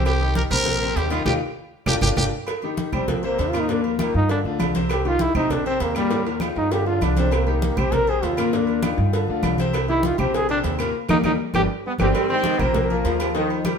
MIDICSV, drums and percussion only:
0, 0, Header, 1, 2, 480
1, 0, Start_track
1, 0, Key_signature, -3, "minor"
1, 0, Tempo, 302115
1, 89, Time_signature, 4, 2, 24, 8
1, 21900, End_track
2, 0, Start_track
2, 0, Title_t, "Drums"
2, 87, Note_on_c, 9, 68, 102
2, 96, Note_on_c, 9, 56, 112
2, 96, Note_on_c, 9, 75, 62
2, 245, Note_off_c, 9, 68, 0
2, 255, Note_off_c, 9, 56, 0
2, 255, Note_off_c, 9, 75, 0
2, 320, Note_on_c, 9, 68, 79
2, 324, Note_on_c, 9, 63, 35
2, 478, Note_off_c, 9, 68, 0
2, 483, Note_off_c, 9, 63, 0
2, 561, Note_on_c, 9, 63, 100
2, 566, Note_on_c, 9, 66, 55
2, 573, Note_on_c, 9, 56, 64
2, 720, Note_off_c, 9, 63, 0
2, 725, Note_off_c, 9, 66, 0
2, 732, Note_off_c, 9, 56, 0
2, 804, Note_on_c, 9, 68, 100
2, 805, Note_on_c, 9, 63, 37
2, 805, Note_on_c, 9, 64, 77
2, 816, Note_on_c, 9, 75, 72
2, 962, Note_off_c, 9, 68, 0
2, 964, Note_off_c, 9, 63, 0
2, 964, Note_off_c, 9, 64, 0
2, 975, Note_off_c, 9, 75, 0
2, 1042, Note_on_c, 9, 56, 114
2, 1044, Note_on_c, 9, 63, 38
2, 1044, Note_on_c, 9, 64, 78
2, 1201, Note_off_c, 9, 56, 0
2, 1203, Note_off_c, 9, 63, 0
2, 1203, Note_off_c, 9, 64, 0
2, 1275, Note_on_c, 9, 63, 35
2, 1287, Note_on_c, 9, 68, 71
2, 1434, Note_off_c, 9, 63, 0
2, 1445, Note_off_c, 9, 68, 0
2, 1512, Note_on_c, 9, 63, 36
2, 1530, Note_on_c, 9, 66, 89
2, 1530, Note_on_c, 9, 68, 92
2, 1537, Note_on_c, 9, 56, 77
2, 1671, Note_off_c, 9, 63, 0
2, 1689, Note_off_c, 9, 66, 0
2, 1689, Note_off_c, 9, 68, 0
2, 1696, Note_off_c, 9, 56, 0
2, 1753, Note_on_c, 9, 56, 70
2, 1755, Note_on_c, 9, 63, 37
2, 1768, Note_on_c, 9, 68, 108
2, 1776, Note_on_c, 9, 75, 63
2, 1912, Note_off_c, 9, 56, 0
2, 1914, Note_off_c, 9, 63, 0
2, 1927, Note_off_c, 9, 68, 0
2, 1935, Note_off_c, 9, 75, 0
2, 1998, Note_on_c, 9, 64, 90
2, 2003, Note_on_c, 9, 56, 93
2, 2007, Note_on_c, 9, 65, 105
2, 2024, Note_on_c, 9, 75, 98
2, 2157, Note_off_c, 9, 64, 0
2, 2162, Note_off_c, 9, 56, 0
2, 2166, Note_off_c, 9, 65, 0
2, 2183, Note_off_c, 9, 75, 0
2, 2957, Note_on_c, 9, 64, 99
2, 2961, Note_on_c, 9, 75, 100
2, 2967, Note_on_c, 9, 65, 96
2, 2975, Note_on_c, 9, 56, 92
2, 3116, Note_off_c, 9, 64, 0
2, 3120, Note_off_c, 9, 75, 0
2, 3126, Note_off_c, 9, 65, 0
2, 3134, Note_off_c, 9, 56, 0
2, 3199, Note_on_c, 9, 64, 96
2, 3205, Note_on_c, 9, 65, 99
2, 3209, Note_on_c, 9, 75, 104
2, 3216, Note_on_c, 9, 56, 95
2, 3358, Note_off_c, 9, 64, 0
2, 3363, Note_off_c, 9, 65, 0
2, 3368, Note_off_c, 9, 75, 0
2, 3375, Note_off_c, 9, 56, 0
2, 3441, Note_on_c, 9, 64, 104
2, 3443, Note_on_c, 9, 65, 92
2, 3448, Note_on_c, 9, 75, 94
2, 3453, Note_on_c, 9, 56, 108
2, 3600, Note_off_c, 9, 64, 0
2, 3602, Note_off_c, 9, 65, 0
2, 3607, Note_off_c, 9, 75, 0
2, 3611, Note_off_c, 9, 56, 0
2, 3918, Note_on_c, 9, 68, 97
2, 3921, Note_on_c, 9, 63, 30
2, 3929, Note_on_c, 9, 75, 65
2, 3937, Note_on_c, 9, 56, 106
2, 4077, Note_off_c, 9, 68, 0
2, 4079, Note_off_c, 9, 63, 0
2, 4088, Note_off_c, 9, 75, 0
2, 4095, Note_off_c, 9, 56, 0
2, 4162, Note_on_c, 9, 68, 77
2, 4171, Note_on_c, 9, 63, 37
2, 4321, Note_off_c, 9, 68, 0
2, 4329, Note_off_c, 9, 63, 0
2, 4405, Note_on_c, 9, 56, 66
2, 4410, Note_on_c, 9, 63, 96
2, 4413, Note_on_c, 9, 66, 55
2, 4564, Note_off_c, 9, 56, 0
2, 4569, Note_off_c, 9, 63, 0
2, 4572, Note_off_c, 9, 66, 0
2, 4649, Note_on_c, 9, 63, 33
2, 4649, Note_on_c, 9, 64, 77
2, 4656, Note_on_c, 9, 68, 112
2, 4656, Note_on_c, 9, 75, 66
2, 4807, Note_off_c, 9, 63, 0
2, 4807, Note_off_c, 9, 64, 0
2, 4815, Note_off_c, 9, 68, 0
2, 4815, Note_off_c, 9, 75, 0
2, 4892, Note_on_c, 9, 63, 36
2, 4892, Note_on_c, 9, 64, 80
2, 4900, Note_on_c, 9, 56, 116
2, 5051, Note_off_c, 9, 63, 0
2, 5051, Note_off_c, 9, 64, 0
2, 5058, Note_off_c, 9, 56, 0
2, 5130, Note_on_c, 9, 68, 70
2, 5138, Note_on_c, 9, 63, 36
2, 5288, Note_off_c, 9, 68, 0
2, 5297, Note_off_c, 9, 63, 0
2, 5376, Note_on_c, 9, 63, 34
2, 5377, Note_on_c, 9, 66, 76
2, 5377, Note_on_c, 9, 68, 90
2, 5387, Note_on_c, 9, 56, 74
2, 5535, Note_off_c, 9, 63, 0
2, 5536, Note_off_c, 9, 66, 0
2, 5536, Note_off_c, 9, 68, 0
2, 5546, Note_off_c, 9, 56, 0
2, 5606, Note_on_c, 9, 63, 32
2, 5614, Note_on_c, 9, 68, 107
2, 5626, Note_on_c, 9, 75, 66
2, 5635, Note_on_c, 9, 56, 74
2, 5765, Note_off_c, 9, 63, 0
2, 5773, Note_off_c, 9, 68, 0
2, 5785, Note_off_c, 9, 75, 0
2, 5794, Note_off_c, 9, 56, 0
2, 5853, Note_on_c, 9, 63, 34
2, 5863, Note_on_c, 9, 56, 97
2, 6012, Note_off_c, 9, 63, 0
2, 6022, Note_off_c, 9, 56, 0
2, 6101, Note_on_c, 9, 63, 36
2, 6101, Note_on_c, 9, 68, 81
2, 6260, Note_off_c, 9, 63, 0
2, 6260, Note_off_c, 9, 68, 0
2, 6339, Note_on_c, 9, 63, 94
2, 6342, Note_on_c, 9, 66, 62
2, 6342, Note_on_c, 9, 68, 91
2, 6354, Note_on_c, 9, 75, 60
2, 6356, Note_on_c, 9, 56, 69
2, 6498, Note_off_c, 9, 63, 0
2, 6501, Note_off_c, 9, 66, 0
2, 6501, Note_off_c, 9, 68, 0
2, 6513, Note_off_c, 9, 75, 0
2, 6514, Note_off_c, 9, 56, 0
2, 6577, Note_on_c, 9, 63, 35
2, 6736, Note_off_c, 9, 63, 0
2, 6823, Note_on_c, 9, 56, 103
2, 6823, Note_on_c, 9, 63, 33
2, 6837, Note_on_c, 9, 68, 75
2, 6982, Note_off_c, 9, 56, 0
2, 6982, Note_off_c, 9, 63, 0
2, 6996, Note_off_c, 9, 68, 0
2, 7073, Note_on_c, 9, 63, 36
2, 7231, Note_off_c, 9, 63, 0
2, 7302, Note_on_c, 9, 66, 85
2, 7302, Note_on_c, 9, 68, 113
2, 7304, Note_on_c, 9, 63, 98
2, 7309, Note_on_c, 9, 56, 72
2, 7311, Note_on_c, 9, 75, 67
2, 7461, Note_off_c, 9, 66, 0
2, 7461, Note_off_c, 9, 68, 0
2, 7463, Note_off_c, 9, 63, 0
2, 7468, Note_off_c, 9, 56, 0
2, 7470, Note_off_c, 9, 75, 0
2, 7541, Note_on_c, 9, 63, 87
2, 7544, Note_on_c, 9, 56, 68
2, 7546, Note_on_c, 9, 68, 69
2, 7700, Note_off_c, 9, 63, 0
2, 7703, Note_off_c, 9, 56, 0
2, 7704, Note_off_c, 9, 68, 0
2, 7776, Note_on_c, 9, 68, 109
2, 7781, Note_on_c, 9, 75, 67
2, 7794, Note_on_c, 9, 56, 112
2, 7935, Note_off_c, 9, 68, 0
2, 7939, Note_off_c, 9, 75, 0
2, 7953, Note_off_c, 9, 56, 0
2, 8024, Note_on_c, 9, 68, 88
2, 8029, Note_on_c, 9, 63, 37
2, 8183, Note_off_c, 9, 68, 0
2, 8188, Note_off_c, 9, 63, 0
2, 8250, Note_on_c, 9, 63, 93
2, 8256, Note_on_c, 9, 66, 59
2, 8259, Note_on_c, 9, 56, 66
2, 8409, Note_off_c, 9, 63, 0
2, 8415, Note_off_c, 9, 66, 0
2, 8417, Note_off_c, 9, 56, 0
2, 8498, Note_on_c, 9, 63, 35
2, 8498, Note_on_c, 9, 64, 74
2, 8500, Note_on_c, 9, 68, 109
2, 8500, Note_on_c, 9, 75, 68
2, 8657, Note_off_c, 9, 63, 0
2, 8657, Note_off_c, 9, 64, 0
2, 8659, Note_off_c, 9, 68, 0
2, 8659, Note_off_c, 9, 75, 0
2, 8742, Note_on_c, 9, 63, 33
2, 8742, Note_on_c, 9, 64, 73
2, 8749, Note_on_c, 9, 56, 102
2, 8901, Note_off_c, 9, 63, 0
2, 8901, Note_off_c, 9, 64, 0
2, 8908, Note_off_c, 9, 56, 0
2, 8979, Note_on_c, 9, 63, 36
2, 8994, Note_on_c, 9, 68, 74
2, 9138, Note_off_c, 9, 63, 0
2, 9153, Note_off_c, 9, 68, 0
2, 9214, Note_on_c, 9, 63, 40
2, 9219, Note_on_c, 9, 56, 78
2, 9221, Note_on_c, 9, 66, 87
2, 9221, Note_on_c, 9, 68, 81
2, 9373, Note_off_c, 9, 63, 0
2, 9378, Note_off_c, 9, 56, 0
2, 9380, Note_off_c, 9, 66, 0
2, 9380, Note_off_c, 9, 68, 0
2, 9451, Note_on_c, 9, 75, 66
2, 9457, Note_on_c, 9, 63, 36
2, 9464, Note_on_c, 9, 68, 101
2, 9466, Note_on_c, 9, 56, 73
2, 9610, Note_off_c, 9, 75, 0
2, 9616, Note_off_c, 9, 63, 0
2, 9623, Note_off_c, 9, 68, 0
2, 9625, Note_off_c, 9, 56, 0
2, 9700, Note_on_c, 9, 56, 100
2, 9705, Note_on_c, 9, 63, 36
2, 9713, Note_on_c, 9, 65, 81
2, 9858, Note_off_c, 9, 56, 0
2, 9864, Note_off_c, 9, 63, 0
2, 9872, Note_off_c, 9, 65, 0
2, 9933, Note_on_c, 9, 63, 36
2, 9955, Note_on_c, 9, 65, 104
2, 9955, Note_on_c, 9, 68, 87
2, 10092, Note_off_c, 9, 63, 0
2, 10114, Note_off_c, 9, 65, 0
2, 10114, Note_off_c, 9, 68, 0
2, 10167, Note_on_c, 9, 63, 85
2, 10179, Note_on_c, 9, 75, 65
2, 10183, Note_on_c, 9, 66, 81
2, 10183, Note_on_c, 9, 68, 94
2, 10193, Note_on_c, 9, 56, 66
2, 10326, Note_off_c, 9, 63, 0
2, 10338, Note_off_c, 9, 75, 0
2, 10342, Note_off_c, 9, 66, 0
2, 10342, Note_off_c, 9, 68, 0
2, 10352, Note_off_c, 9, 56, 0
2, 10421, Note_on_c, 9, 63, 31
2, 10429, Note_on_c, 9, 65, 72
2, 10579, Note_off_c, 9, 63, 0
2, 10587, Note_off_c, 9, 65, 0
2, 10664, Note_on_c, 9, 63, 33
2, 10669, Note_on_c, 9, 66, 81
2, 10669, Note_on_c, 9, 68, 86
2, 10670, Note_on_c, 9, 56, 113
2, 10823, Note_off_c, 9, 63, 0
2, 10828, Note_off_c, 9, 56, 0
2, 10828, Note_off_c, 9, 66, 0
2, 10828, Note_off_c, 9, 68, 0
2, 10902, Note_on_c, 9, 63, 36
2, 10905, Note_on_c, 9, 66, 72
2, 11061, Note_off_c, 9, 63, 0
2, 11064, Note_off_c, 9, 66, 0
2, 11140, Note_on_c, 9, 63, 92
2, 11149, Note_on_c, 9, 66, 73
2, 11149, Note_on_c, 9, 68, 102
2, 11152, Note_on_c, 9, 56, 75
2, 11153, Note_on_c, 9, 75, 70
2, 11299, Note_off_c, 9, 63, 0
2, 11308, Note_off_c, 9, 66, 0
2, 11308, Note_off_c, 9, 68, 0
2, 11311, Note_off_c, 9, 56, 0
2, 11311, Note_off_c, 9, 75, 0
2, 11384, Note_on_c, 9, 63, 82
2, 11388, Note_on_c, 9, 66, 73
2, 11388, Note_on_c, 9, 68, 70
2, 11396, Note_on_c, 9, 56, 75
2, 11543, Note_off_c, 9, 63, 0
2, 11547, Note_off_c, 9, 66, 0
2, 11547, Note_off_c, 9, 68, 0
2, 11555, Note_off_c, 9, 56, 0
2, 11621, Note_on_c, 9, 68, 105
2, 11634, Note_on_c, 9, 56, 109
2, 11644, Note_on_c, 9, 75, 68
2, 11780, Note_off_c, 9, 68, 0
2, 11793, Note_off_c, 9, 56, 0
2, 11803, Note_off_c, 9, 75, 0
2, 11863, Note_on_c, 9, 68, 84
2, 11879, Note_on_c, 9, 63, 37
2, 12022, Note_off_c, 9, 68, 0
2, 12038, Note_off_c, 9, 63, 0
2, 12109, Note_on_c, 9, 63, 99
2, 12111, Note_on_c, 9, 56, 68
2, 12116, Note_on_c, 9, 66, 63
2, 12268, Note_off_c, 9, 63, 0
2, 12270, Note_off_c, 9, 56, 0
2, 12275, Note_off_c, 9, 66, 0
2, 12345, Note_on_c, 9, 63, 34
2, 12345, Note_on_c, 9, 64, 83
2, 12347, Note_on_c, 9, 68, 111
2, 12358, Note_on_c, 9, 75, 72
2, 12504, Note_off_c, 9, 63, 0
2, 12504, Note_off_c, 9, 64, 0
2, 12506, Note_off_c, 9, 68, 0
2, 12517, Note_off_c, 9, 75, 0
2, 12584, Note_on_c, 9, 56, 112
2, 12591, Note_on_c, 9, 63, 36
2, 12591, Note_on_c, 9, 64, 71
2, 12742, Note_off_c, 9, 56, 0
2, 12750, Note_off_c, 9, 63, 0
2, 12750, Note_off_c, 9, 64, 0
2, 12827, Note_on_c, 9, 68, 69
2, 12835, Note_on_c, 9, 63, 38
2, 12986, Note_off_c, 9, 68, 0
2, 12994, Note_off_c, 9, 63, 0
2, 13070, Note_on_c, 9, 66, 89
2, 13070, Note_on_c, 9, 68, 82
2, 13074, Note_on_c, 9, 63, 36
2, 13077, Note_on_c, 9, 56, 72
2, 13229, Note_off_c, 9, 66, 0
2, 13229, Note_off_c, 9, 68, 0
2, 13233, Note_off_c, 9, 63, 0
2, 13235, Note_off_c, 9, 56, 0
2, 13303, Note_on_c, 9, 68, 101
2, 13313, Note_on_c, 9, 75, 73
2, 13318, Note_on_c, 9, 56, 77
2, 13319, Note_on_c, 9, 63, 34
2, 13461, Note_off_c, 9, 68, 0
2, 13472, Note_off_c, 9, 75, 0
2, 13477, Note_off_c, 9, 56, 0
2, 13478, Note_off_c, 9, 63, 0
2, 13550, Note_on_c, 9, 63, 35
2, 13555, Note_on_c, 9, 56, 105
2, 13708, Note_off_c, 9, 63, 0
2, 13714, Note_off_c, 9, 56, 0
2, 13775, Note_on_c, 9, 68, 77
2, 13799, Note_on_c, 9, 63, 36
2, 13933, Note_off_c, 9, 68, 0
2, 13958, Note_off_c, 9, 63, 0
2, 14023, Note_on_c, 9, 63, 98
2, 14024, Note_on_c, 9, 66, 59
2, 14024, Note_on_c, 9, 68, 100
2, 14027, Note_on_c, 9, 56, 68
2, 14032, Note_on_c, 9, 75, 64
2, 14181, Note_off_c, 9, 63, 0
2, 14183, Note_off_c, 9, 66, 0
2, 14183, Note_off_c, 9, 68, 0
2, 14186, Note_off_c, 9, 56, 0
2, 14191, Note_off_c, 9, 75, 0
2, 14262, Note_on_c, 9, 63, 33
2, 14421, Note_off_c, 9, 63, 0
2, 14502, Note_on_c, 9, 63, 34
2, 14508, Note_on_c, 9, 68, 80
2, 14513, Note_on_c, 9, 56, 117
2, 14661, Note_off_c, 9, 63, 0
2, 14667, Note_off_c, 9, 68, 0
2, 14671, Note_off_c, 9, 56, 0
2, 14732, Note_on_c, 9, 63, 34
2, 14891, Note_off_c, 9, 63, 0
2, 14978, Note_on_c, 9, 63, 85
2, 14983, Note_on_c, 9, 66, 82
2, 14983, Note_on_c, 9, 68, 107
2, 14986, Note_on_c, 9, 75, 69
2, 14994, Note_on_c, 9, 56, 71
2, 15137, Note_off_c, 9, 63, 0
2, 15142, Note_off_c, 9, 66, 0
2, 15142, Note_off_c, 9, 68, 0
2, 15145, Note_off_c, 9, 75, 0
2, 15153, Note_off_c, 9, 56, 0
2, 15221, Note_on_c, 9, 63, 82
2, 15227, Note_on_c, 9, 68, 73
2, 15246, Note_on_c, 9, 56, 73
2, 15380, Note_off_c, 9, 63, 0
2, 15386, Note_off_c, 9, 68, 0
2, 15405, Note_off_c, 9, 56, 0
2, 15456, Note_on_c, 9, 63, 35
2, 15467, Note_on_c, 9, 68, 112
2, 15476, Note_on_c, 9, 75, 61
2, 15481, Note_on_c, 9, 56, 110
2, 15615, Note_off_c, 9, 63, 0
2, 15626, Note_off_c, 9, 68, 0
2, 15635, Note_off_c, 9, 75, 0
2, 15640, Note_off_c, 9, 56, 0
2, 15703, Note_on_c, 9, 63, 36
2, 15703, Note_on_c, 9, 68, 86
2, 15862, Note_off_c, 9, 63, 0
2, 15862, Note_off_c, 9, 68, 0
2, 15937, Note_on_c, 9, 63, 97
2, 15941, Note_on_c, 9, 66, 59
2, 15963, Note_on_c, 9, 56, 65
2, 16096, Note_off_c, 9, 63, 0
2, 16100, Note_off_c, 9, 66, 0
2, 16122, Note_off_c, 9, 56, 0
2, 16176, Note_on_c, 9, 68, 105
2, 16186, Note_on_c, 9, 63, 33
2, 16186, Note_on_c, 9, 64, 82
2, 16199, Note_on_c, 9, 75, 69
2, 16335, Note_off_c, 9, 68, 0
2, 16344, Note_off_c, 9, 63, 0
2, 16344, Note_off_c, 9, 64, 0
2, 16358, Note_off_c, 9, 75, 0
2, 16428, Note_on_c, 9, 63, 35
2, 16435, Note_on_c, 9, 56, 112
2, 16587, Note_off_c, 9, 63, 0
2, 16594, Note_off_c, 9, 56, 0
2, 16664, Note_on_c, 9, 68, 76
2, 16667, Note_on_c, 9, 63, 34
2, 16823, Note_off_c, 9, 68, 0
2, 16826, Note_off_c, 9, 63, 0
2, 16898, Note_on_c, 9, 66, 93
2, 16898, Note_on_c, 9, 68, 80
2, 16903, Note_on_c, 9, 63, 40
2, 16908, Note_on_c, 9, 56, 74
2, 17057, Note_off_c, 9, 66, 0
2, 17057, Note_off_c, 9, 68, 0
2, 17062, Note_off_c, 9, 63, 0
2, 17067, Note_off_c, 9, 56, 0
2, 17137, Note_on_c, 9, 68, 110
2, 17140, Note_on_c, 9, 63, 35
2, 17141, Note_on_c, 9, 75, 67
2, 17157, Note_on_c, 9, 56, 74
2, 17296, Note_off_c, 9, 68, 0
2, 17299, Note_off_c, 9, 63, 0
2, 17299, Note_off_c, 9, 75, 0
2, 17316, Note_off_c, 9, 56, 0
2, 17613, Note_on_c, 9, 65, 89
2, 17620, Note_on_c, 9, 63, 113
2, 17623, Note_on_c, 9, 56, 98
2, 17626, Note_on_c, 9, 75, 99
2, 17772, Note_off_c, 9, 65, 0
2, 17779, Note_off_c, 9, 63, 0
2, 17782, Note_off_c, 9, 56, 0
2, 17785, Note_off_c, 9, 75, 0
2, 17850, Note_on_c, 9, 63, 102
2, 17854, Note_on_c, 9, 65, 94
2, 17862, Note_on_c, 9, 75, 101
2, 17870, Note_on_c, 9, 56, 94
2, 18009, Note_off_c, 9, 63, 0
2, 18013, Note_off_c, 9, 65, 0
2, 18020, Note_off_c, 9, 75, 0
2, 18029, Note_off_c, 9, 56, 0
2, 18329, Note_on_c, 9, 63, 101
2, 18343, Note_on_c, 9, 75, 101
2, 18345, Note_on_c, 9, 65, 94
2, 18347, Note_on_c, 9, 56, 99
2, 18488, Note_off_c, 9, 63, 0
2, 18502, Note_off_c, 9, 75, 0
2, 18504, Note_off_c, 9, 65, 0
2, 18506, Note_off_c, 9, 56, 0
2, 19042, Note_on_c, 9, 63, 89
2, 19057, Note_on_c, 9, 65, 99
2, 19060, Note_on_c, 9, 56, 101
2, 19062, Note_on_c, 9, 75, 100
2, 19201, Note_off_c, 9, 63, 0
2, 19216, Note_off_c, 9, 65, 0
2, 19219, Note_off_c, 9, 56, 0
2, 19221, Note_off_c, 9, 75, 0
2, 19287, Note_on_c, 9, 63, 34
2, 19295, Note_on_c, 9, 68, 115
2, 19301, Note_on_c, 9, 56, 108
2, 19312, Note_on_c, 9, 75, 69
2, 19446, Note_off_c, 9, 63, 0
2, 19454, Note_off_c, 9, 68, 0
2, 19460, Note_off_c, 9, 56, 0
2, 19471, Note_off_c, 9, 75, 0
2, 19523, Note_on_c, 9, 63, 38
2, 19542, Note_on_c, 9, 68, 82
2, 19681, Note_off_c, 9, 63, 0
2, 19700, Note_off_c, 9, 68, 0
2, 19758, Note_on_c, 9, 63, 100
2, 19776, Note_on_c, 9, 56, 67
2, 19778, Note_on_c, 9, 66, 61
2, 19917, Note_off_c, 9, 63, 0
2, 19935, Note_off_c, 9, 56, 0
2, 19937, Note_off_c, 9, 66, 0
2, 20008, Note_on_c, 9, 63, 33
2, 20008, Note_on_c, 9, 64, 90
2, 20014, Note_on_c, 9, 68, 100
2, 20024, Note_on_c, 9, 75, 66
2, 20167, Note_off_c, 9, 63, 0
2, 20167, Note_off_c, 9, 64, 0
2, 20173, Note_off_c, 9, 68, 0
2, 20183, Note_off_c, 9, 75, 0
2, 20248, Note_on_c, 9, 56, 106
2, 20248, Note_on_c, 9, 63, 33
2, 20248, Note_on_c, 9, 64, 76
2, 20407, Note_off_c, 9, 56, 0
2, 20407, Note_off_c, 9, 63, 0
2, 20407, Note_off_c, 9, 64, 0
2, 20499, Note_on_c, 9, 63, 39
2, 20500, Note_on_c, 9, 68, 71
2, 20658, Note_off_c, 9, 63, 0
2, 20659, Note_off_c, 9, 68, 0
2, 20729, Note_on_c, 9, 56, 77
2, 20730, Note_on_c, 9, 63, 38
2, 20740, Note_on_c, 9, 66, 83
2, 20740, Note_on_c, 9, 68, 83
2, 20888, Note_off_c, 9, 56, 0
2, 20889, Note_off_c, 9, 63, 0
2, 20899, Note_off_c, 9, 66, 0
2, 20899, Note_off_c, 9, 68, 0
2, 20965, Note_on_c, 9, 63, 36
2, 20968, Note_on_c, 9, 68, 108
2, 20971, Note_on_c, 9, 56, 80
2, 20992, Note_on_c, 9, 75, 63
2, 21124, Note_off_c, 9, 63, 0
2, 21127, Note_off_c, 9, 68, 0
2, 21130, Note_off_c, 9, 56, 0
2, 21150, Note_off_c, 9, 75, 0
2, 21205, Note_on_c, 9, 56, 114
2, 21208, Note_on_c, 9, 63, 35
2, 21364, Note_off_c, 9, 56, 0
2, 21367, Note_off_c, 9, 63, 0
2, 21447, Note_on_c, 9, 63, 36
2, 21453, Note_on_c, 9, 68, 88
2, 21605, Note_off_c, 9, 63, 0
2, 21612, Note_off_c, 9, 68, 0
2, 21682, Note_on_c, 9, 56, 74
2, 21682, Note_on_c, 9, 63, 89
2, 21689, Note_on_c, 9, 66, 60
2, 21689, Note_on_c, 9, 68, 103
2, 21695, Note_on_c, 9, 75, 67
2, 21841, Note_off_c, 9, 56, 0
2, 21841, Note_off_c, 9, 63, 0
2, 21848, Note_off_c, 9, 66, 0
2, 21848, Note_off_c, 9, 68, 0
2, 21854, Note_off_c, 9, 75, 0
2, 21900, End_track
0, 0, End_of_file